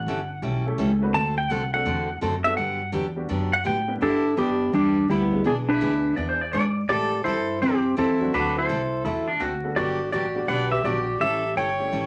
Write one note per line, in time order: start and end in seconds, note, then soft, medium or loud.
0.00 0.43 F#5 medium
0.06 0.41 G1 medium
0.06 0.19 E3 medium
0.06 0.19 G3 medium
0.06 0.19 C#4 medium
0.06 0.19 E4 medium
0.06 0.19 A4 medium
0.42 0.77 B1 medium
0.42 0.64 E3 medium
0.42 0.64 G3 medium
0.42 0.65 C#4 medium
0.42 0.64 E4 medium
0.42 0.65 A4 medium
0.66 0.99 A3 medium
0.66 0.99 C#4 medium
0.66 0.99 E4 medium
0.66 1.00 G4 medium
0.66 1.00 A4 loud
0.78 1.13 C#2 loud
0.78 0.90 E3 medium
0.78 0.90 G3 medium
0.78 0.90 C#4 medium
0.78 0.90 E4 medium
0.78 0.90 A4 medium
1.02 1.13 A3 medium
1.02 1.13 C4 medium
1.02 1.13 D4 medium
1.02 1.13 F#4 medium
1.02 1.13 B4 loud
1.14 1.49 D2 loud
1.14 1.36 D3 medium
1.14 1.36 A3 medium
1.14 1.36 C4 medium
1.14 1.36 F#4 medium
1.14 1.37 A4 medium
1.14 1.37 A5 loud
1.38 1.52 G5 loud
1.49 1.84 C2 medium
1.49 1.61 D3 medium
1.49 1.61 A3 medium
1.49 1.62 C4 medium
1.49 1.62 F#4 medium
1.49 1.62 A4 medium
1.49 1.73 F#5 medium
1.73 1.84 A3 medium
1.73 1.84 C4 medium
1.73 1.85 D4 medium
1.73 1.85 F#4 medium
1.73 1.85 A4 medium
1.73 2.19 F#5 loud
1.85 2.20 E2 loud
1.85 2.08 D3 medium
1.85 2.08 A3 medium
1.85 2.08 C4 medium
1.85 2.08 F#4 medium
1.85 2.08 A4 medium
2.21 2.56 F#2 loud
2.21 2.33 D3 medium
2.21 2.33 A3 medium
2.21 2.33 C4 medium
2.21 2.34 F#4 medium
2.21 2.34 A4 loud
2.44 2.56 G3 medium
2.44 2.56 B3 medium
2.44 2.56 D4 medium
2.44 2.56 F#4 medium
2.44 2.56 A4 medium
2.44 2.56 E5 loud
2.57 2.92 G2 medium
2.57 2.79 D3 medium
2.57 2.80 F#3 medium
2.57 2.79 B3 medium
2.57 2.80 D4 medium
2.57 2.80 G4 medium
2.57 2.91 F#5 loud
2.92 3.28 E2 loud
2.92 3.04 D3 medium
2.92 3.05 F#3 medium
2.92 3.05 B3 medium
2.92 3.05 D4 medium
2.92 3.05 G4 medium
3.16 3.28 G3 medium
3.16 3.28 B3 medium
3.16 3.28 D4 medium
3.16 3.28 F#4 medium
3.16 3.28 G4 medium
3.29 3.64 F#2 loud
3.29 3.51 D3 medium
3.29 3.51 F#3 medium
3.29 3.51 B3 medium
3.29 3.51 D4 medium
3.29 3.51 G4 medium
3.53 3.65 F#5 loud
3.64 4.00 A2 loud
3.64 3.76 D3 medium
3.64 3.77 F#3 medium
3.64 3.77 B3 medium
3.64 3.77 D4 medium
3.64 3.77 G4 medium
3.64 3.93 G5 medium
3.88 4.00 G3 medium
3.88 4.00 B3 medium
3.88 4.00 D4 medium
3.88 4.00 E4 medium
3.88 4.00 G4 medium
4.01 4.36 G2 medium
4.01 4.23 G3 medium
4.01 4.23 B3 medium
4.01 4.35 D4 medium
4.01 4.23 E4 medium
4.01 4.36 E4 medium
4.01 4.24 G4 medium
4.01 4.39 A4 medium
4.37 4.72 F#2 medium
4.37 4.49 G3 medium
4.37 4.49 B3 medium
4.37 4.71 B3 medium
4.37 4.72 D4 medium
4.37 4.49 E4 medium
4.37 4.49 G4 medium
4.37 4.75 G4 medium
4.73 5.08 E2 medium
4.73 4.95 G3 medium
4.73 5.07 G3 medium
4.73 5.08 G3 medium
4.73 4.95 B3 medium
4.73 5.07 D4 medium
4.73 4.95 E4 medium
4.73 4.96 G4 medium
5.09 5.44 D2 medium
5.09 5.43 G3 medium
5.09 5.21 G3 medium
5.09 5.21 B3 medium
5.09 5.43 B3 medium
5.09 5.22 E4 medium
5.09 5.47 E4 medium
5.09 5.22 G4 medium
5.32 5.78 G#3 medium
5.32 5.79 B3 medium
5.32 5.79 D4 medium
5.32 5.79 E4 medium
5.32 5.79 G#4 medium
5.44 5.80 B1 medium
5.44 5.67 E3 medium
5.44 5.67 B3 medium
5.44 5.52 B3 medium
5.44 5.67 D4 medium
5.44 5.56 D4 medium
5.44 5.67 G#4 medium
5.44 5.53 G#4 loud
5.69 6.14 D4 medium
5.69 6.14 E4 medium
5.69 6.14 B4 medium
5.81 6.16 D2 medium
5.81 5.92 E3 medium
5.81 6.15 G#3 medium
5.81 5.93 B3 medium
5.81 6.15 B3 soft
5.81 6.15 D4 medium
5.81 5.93 D4 medium
5.81 6.16 E4 medium
5.81 6.16 G#4 medium
5.81 5.93 G#4 medium
6.16 6.52 E2 loud
6.16 6.39 E3 medium
6.16 6.38 G#3 medium
6.16 6.38 B3 medium
6.16 6.39 B3 medium
6.16 6.38 D4 medium
6.16 6.39 D4 medium
6.16 6.38 E4 medium
6.16 6.38 G#4 medium
6.16 6.39 G#4 medium
6.16 6.28 D5 medium
6.29 6.40 C5 medium
6.41 6.52 D5 medium
6.53 6.88 G#2 medium
6.53 6.64 E3 medium
6.53 6.65 B3 medium
6.53 6.65 D4 medium
6.53 6.65 G#4 medium
6.53 6.76 D5 loud
6.89 7.24 A2 medium
6.89 7.11 E3 medium
6.89 7.11 G3 medium
6.89 7.11 C4 medium
6.89 7.11 E4 medium
6.89 7.23 G4 medium
6.89 7.22 A4 loud
6.89 7.11 A4 medium
6.89 7.22 D5 loud
7.24 7.60 G2 medium
7.24 7.37 E3 medium
7.24 7.37 G3 medium
7.24 7.37 C4 medium
7.24 7.58 E4 medium
7.24 7.37 E4 medium
7.24 7.59 A4 medium
7.24 7.37 A4 medium
7.24 7.61 C5 medium
7.61 7.96 F#2 medium
7.61 7.83 E3 medium
7.61 7.84 G3 medium
7.61 7.94 C4 medium
7.61 7.95 C4 medium
7.61 7.84 C4 medium
7.61 7.84 E4 medium
7.61 7.98 G4 medium
7.61 7.84 A4 medium
7.96 8.32 E2 medium
7.96 8.08 E3 medium
7.96 8.08 G3 medium
7.96 8.09 C4 medium
7.96 8.31 C4 medium
7.96 8.09 E4 medium
7.96 8.32 E4 medium
7.96 8.09 A4 medium
7.96 8.35 A4 medium
8.20 8.66 F#3 medium
8.20 8.66 A3 medium
8.20 8.66 C4 medium
8.20 8.66 D4 medium
8.20 8.66 F#4 medium
8.34 8.68 D2 medium
8.34 8.55 D3 medium
8.34 8.55 A3 medium
8.34 8.55 C4 medium
8.34 8.55 D4 medium
8.34 8.56 F#4 medium
8.34 8.56 A4 medium
8.34 8.57 B4 medium
8.58 9.02 E4 medium
8.58 9.02 A4 medium
8.58 9.03 C5 medium
8.69 9.04 C2 medium
8.69 8.81 D3 medium
8.69 8.81 A3 medium
8.69 8.81 C4 medium
8.69 8.81 F#4 medium
8.69 8.81 A4 medium
9.05 9.39 E2 medium
9.05 9.27 D3 medium
9.05 9.27 A3 medium
9.05 9.27 C4 medium
9.05 9.27 E4 medium
9.05 9.27 F#4 medium
9.05 9.27 A4 medium
9.28 9.40 D4 medium
9.40 9.75 D2 medium
9.40 9.52 D3 medium
9.40 9.52 A3 medium
9.40 9.52 C4 medium
9.40 9.69 F#4 medium
9.40 9.52 F#4 medium
9.40 9.52 A4 medium
9.64 10.10 G3 medium
9.64 10.10 B3 medium
9.64 10.10 D4 medium
9.64 10.10 A4 medium
9.64 10.10 F#5 medium
9.76 10.11 G1 medium
9.76 9.99 D3 medium
9.76 9.99 F#3 medium
9.76 9.99 B3 medium
9.76 9.99 D4 medium
9.76 10.10 F#4 medium
9.76 10.10 G4 medium
9.76 9.99 G4 medium
9.76 10.11 D5 medium
10.12 10.47 A1 medium
10.12 10.24 D3 medium
10.12 10.24 F#3 medium
10.12 10.24 B3 medium
10.12 10.25 D4 medium
10.12 10.47 F#4 medium
10.12 10.46 G4 medium
10.12 10.25 G4 medium
10.12 10.49 D5 medium
10.35 10.81 G3 medium
10.35 10.81 B3 medium
10.35 10.82 D4 medium
10.35 10.82 F#4 medium
10.35 10.82 G4 medium
10.47 10.83 B1 medium
10.47 10.71 D3 medium
10.47 10.71 F#3 medium
10.47 10.71 B3 medium
10.47 10.71 D4 medium
10.47 10.71 G4 medium
10.47 10.70 B4 medium
10.47 10.69 D5 medium
10.47 10.71 F#5 medium
10.71 10.84 G4 medium
10.71 10.83 B4 medium
10.71 10.85 E5 medium
10.83 11.19 A#1 loud
10.83 10.96 D3 medium
10.83 10.96 F#3 medium
10.83 11.05 G3 medium
10.83 11.05 B3 medium
10.83 10.96 B3 medium
10.83 11.05 D4 medium
10.83 10.97 D4 medium
10.83 11.05 F#4 medium
10.83 11.18 F#4 medium
10.83 11.17 G4 medium
10.83 11.06 G4 medium
10.83 10.97 G4 medium
10.83 11.22 D5 medium
11.19 11.55 A1 loud
11.19 11.43 E3 medium
11.19 11.43 G3 medium
11.19 11.43 C#4 medium
11.19 11.43 E4 medium
11.19 11.54 G4 medium
11.19 11.53 A4 medium
11.19 11.43 A4 medium
11.19 11.57 E5 loud
11.56 11.91 G1 medium
11.56 11.68 E3 medium
11.56 11.68 G3 medium
11.56 11.68 C#4 medium
11.56 11.69 E4 medium
11.56 11.69 A4 medium
11.56 12.06 C#5 medium
11.56 12.06 G5 medium
11.78 12.06 G3 medium
11.78 12.06 A3 medium
11.78 12.06 C#4 medium
11.78 12.06 E4 medium
11.78 12.06 G4 medium
11.92 12.06 A1 medium
11.92 12.06 E3 medium
11.92 12.06 G3 medium
11.92 12.06 C#4 medium
11.92 12.06 E4 medium
11.92 12.06 A4 medium